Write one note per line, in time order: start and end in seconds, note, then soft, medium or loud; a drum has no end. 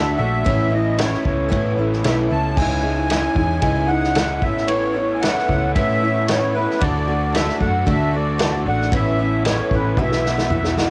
0.00 0.21 D2 medium
0.00 0.19 D3 medium
0.00 0.19 A3 medium
0.00 0.17 D4 medium
0.00 0.43 D4 medium
0.00 0.16 F#4 medium
0.00 0.44 F#4 medium
0.00 0.43 A4 medium
0.00 0.43 D5 medium
0.00 0.16 E5 medium
0.17 0.42 A#1 loud
0.17 0.44 A3 soft
0.17 0.46 D4 medium
0.17 0.45 F#4 medium
0.17 0.73 E5 loud
0.44 1.14 A1 loud
0.44 0.72 A2 medium
0.44 0.72 E3 medium
0.44 0.71 A3 loud
0.44 0.72 B3 medium
0.44 0.70 C#4 medium
0.44 0.69 E4 medium
0.44 2.57 E4 medium
0.44 2.57 A4 medium
0.44 2.57 B4 medium
0.44 2.57 C#5 medium
0.44 kick loud
0.44 ride bell medium
0.71 0.98 A3 medium
0.71 0.97 B3 soft
0.71 0.97 C#4 medium
0.71 0.98 E4 medium
0.71 1.00 D#5 medium
0.97 1.25 E3 medium
0.97 1.52 A3 medium
0.97 1.24 B3 medium
0.97 1.23 C#4 medium
0.97 1.22 E4 medium
0.97 1.24 C#5 medium
0.97 snare loud
0.97 ride bell medium
1.14 snare soft
1.23 1.53 C#2 medium
1.23 1.49 B3 soft
1.23 1.49 C#4 medium
1.23 1.49 E4 medium
1.23 1.75 C#5 medium
1.23 kick medium
1.49 1.77 A2 medium
1.49 1.75 A2 medium
1.49 1.77 E3 medium
1.49 1.78 B3 medium
1.49 1.78 C#4 medium
1.49 1.77 E4 medium
1.49 kick loud
1.49 ride bell medium
1.53 1.77 A3 loud
1.77 2.02 A1 medium
1.77 2.03 A3 medium
1.77 2.03 B3 soft
1.77 2.03 C#4 medium
1.77 2.04 E4 medium
1.93 snare soft
2.03 2.29 B1 medium
2.03 2.31 E3 medium
2.03 2.30 A3 medium
2.03 2.31 B3 medium
2.03 2.30 C#4 medium
2.03 2.29 E4 medium
2.03 2.17 E5 medium
2.03 snare loud
2.03 ride bell medium
2.30 2.56 C#2 medium
2.30 2.56 A3 medium
2.30 2.56 B3 soft
2.30 2.58 C#4 soft
2.30 2.58 E4 medium
2.30 2.56 A5 loud
2.56 3.26 C#2 medium
2.56 2.84 C#3 medium
2.56 2.84 E3 medium
2.56 2.82 G#3 medium
2.56 2.84 C#4 loud
2.56 2.81 D#4 medium
2.56 4.40 E4 medium
2.56 2.80 E4 medium
2.56 4.42 G#4 medium
2.56 4.40 C#5 medium
2.56 4.41 D#5 medium
2.56 3.09 G#5 loud
2.56 kick loud
2.56 crash loud
2.81 3.09 G#3 soft
2.81 3.09 C#4 medium
2.81 3.09 D#4 soft
2.81 3.09 E4 medium
3.08 3.36 E3 medium
3.08 3.36 G#3 medium
3.08 3.61 C#4 medium
3.08 3.35 D#4 medium
3.08 3.34 E4 medium
3.08 3.60 G#5 loud
3.08 snare medium
3.08 ride bell medium
3.35 3.59 E2 medium
3.35 3.61 G#3 soft
3.35 3.61 D#4 soft
3.35 3.61 E4 soft
3.35 kick medium
3.62 4.42 C#2 medium
3.62 3.90 C#3 medium
3.62 3.90 E3 medium
3.62 3.88 G#3 medium
3.62 3.88 C#4 loud
3.62 3.87 D#4 medium
3.62 3.86 E4 medium
3.62 3.91 G#5 loud
3.62 kick loud
3.62 ride bell medium
3.87 4.15 G#3 soft
3.87 4.14 C#4 medium
3.87 4.16 D#4 medium
3.87 4.16 E4 medium
3.87 4.44 F#5 loud
4.04 snare soft
4.15 4.43 E3 medium
4.15 4.43 G#3 medium
4.15 4.41 C#4 medium
4.15 4.42 D#4 medium
4.15 4.41 E4 medium
4.15 snare loud
4.15 ride bell medium
4.40 5.33 A1 loud
4.40 4.69 A3 medium
4.40 4.67 B3 soft
4.40 4.68 C#4 soft
4.40 6.78 E4 medium
4.40 4.68 E4 medium
4.40 6.78 A4 medium
4.40 6.77 B4 medium
4.40 6.78 C#5 medium
4.40 4.70 E5 loud
4.40 kick loud
4.44 4.67 A2 medium
4.44 4.68 E3 medium
4.57 snare soft
4.66 4.96 A2 medium
4.66 4.95 E3 medium
4.66 4.98 A3 loud
4.66 4.95 B3 medium
4.66 4.94 C#4 medium
4.66 4.93 E4 medium
4.66 5.16 C#5 loud
4.66 ride bell medium
4.94 5.21 B3 soft
4.94 5.22 C#4 soft
4.94 5.22 E4 medium
4.98 5.23 A3 medium
5.15 5.22 G#5 medium
5.21 5.49 E3 medium
5.21 5.74 A3 medium
5.21 5.49 B3 medium
5.21 5.48 C#4 medium
5.21 5.71 F#5 loud
5.21 snare loud
5.21 ride bell medium
5.25 5.47 E4 medium
5.38 snare soft
5.48 5.77 C#2 medium
5.48 5.75 B3 soft
5.48 5.75 C#4 medium
5.48 5.75 E4 medium
5.48 kick medium
5.75 6.02 A2 medium
5.75 6.66 A2 loud
5.75 6.02 E3 medium
5.75 6.03 A3 loud
5.75 6.03 B3 medium
5.75 6.03 C#4 medium
5.75 6.01 E4 medium
5.75 6.30 E5 loud
5.75 kick loud
5.75 ride bell medium
6.02 6.28 A3 medium
6.02 6.29 B3 soft
6.02 6.29 C#4 medium
6.02 6.29 E4 medium
6.26 6.56 E3 medium
6.26 6.56 A3 medium
6.26 6.56 B3 medium
6.26 6.54 C#4 medium
6.26 6.55 C#5 medium
6.26 snare loud
6.26 ride bell medium
6.31 6.54 E4 medium
6.55 6.80 A3 medium
6.55 6.80 B3 soft
6.55 6.80 C#4 soft
6.55 6.80 E4 medium
6.55 6.82 B4 loud
6.70 snare soft
6.79 7.50 D2 loud
6.79 7.07 D3 medium
6.79 7.08 A3 medium
6.79 8.90 D4 medium
6.79 7.07 D4 medium
6.79 7.06 F#4 medium
6.79 8.91 F#4 medium
6.79 8.91 A4 medium
6.79 7.35 D5 loud
6.79 8.90 D5 medium
6.79 kick loud
6.79 ride bell medium
7.07 7.34 A3 soft
7.07 7.34 D4 medium
7.07 7.34 F#4 medium
7.33 7.60 D3 medium
7.33 7.60 A3 medium
7.33 7.60 D4 medium
7.33 7.59 F#4 medium
7.33 7.59 E5 medium
7.33 snare loud
7.33 ride bell medium
7.49 snare soft
7.60 7.83 F#2 medium
7.60 7.85 A3 soft
7.60 7.86 D4 soft
7.60 7.87 F#4 medium
7.60 7.88 F#5 medium
7.60 kick medium
7.86 8.67 D2 medium
7.86 8.13 D3 medium
7.86 8.14 A3 medium
7.86 8.13 D4 medium
7.86 8.12 F#4 medium
7.86 8.15 E5 loud
7.86 kick loud
7.86 ride bell medium
8.13 8.38 A3 soft
8.13 8.39 D4 soft
8.13 8.40 F#4 medium
8.13 8.40 D5 medium
8.38 8.66 D3 medium
8.38 8.66 A3 medium
8.38 8.67 D4 medium
8.38 8.65 F#4 medium
8.38 8.68 D5 medium
8.38 snare loud
8.38 ride bell medium
8.66 8.89 A1 loud
8.66 8.92 A3 soft
8.66 8.92 D4 soft
8.66 8.93 F#4 medium
8.66 8.92 F#5 loud
8.81 snare soft
8.92 9.60 A1 loud
8.92 9.19 A2 medium
8.92 9.19 E3 medium
8.92 9.19 A3 loud
8.92 9.19 B3 medium
8.92 9.19 C#4 medium
8.92 9.98 C#4 medium
8.92 9.18 E4 medium
8.92 9.97 E4 medium
8.92 9.98 A4 medium
8.92 9.96 B4 medium
8.92 9.43 E5 medium
8.92 kick loud
8.92 ride bell medium
9.19 9.45 A3 soft
9.19 9.45 B3 soft
9.19 9.46 C#4 medium
9.19 9.46 E4 medium
9.45 9.72 E3 medium
9.45 9.97 A3 medium
9.45 9.72 B3 medium
9.45 9.73 C#4 medium
9.45 9.72 E4 medium
9.45 snare loud
9.45 ride bell medium
9.49 9.75 C#5 medium
9.71 9.97 A1 medium
9.71 9.97 B3 soft
9.71 9.99 C#4 medium
9.71 9.98 E4 medium
9.71 9.98 B4 medium
9.71 kick medium
9.97 10.88 B1 loud
9.97 10.24 B2 medium
9.97 10.25 E3 medium
9.97 10.90 B3 medium
9.97 10.25 B3 medium
9.97 10.90 E4 medium
9.97 10.25 E4 medium
9.97 10.90 F#4 medium
9.97 10.24 F#4 medium
9.97 10.90 B4 medium
9.97 kick loud
9.97 high tom medium
10.02 10.76 E5 medium
10.12 snare medium
10.25 10.51 B3 soft
10.25 10.51 E4 soft
10.25 10.51 F#4 medium
10.25 snare medium
10.38 snare medium
10.50 10.77 E3 medium
10.50 10.78 B3 medium
10.50 10.77 E4 medium
10.50 10.76 F#4 medium
10.50 mid tom loud
10.64 snare medium
10.77 10.90 B3 soft
10.77 10.90 E4 medium
10.77 10.90 F#4 medium
10.77 snare loud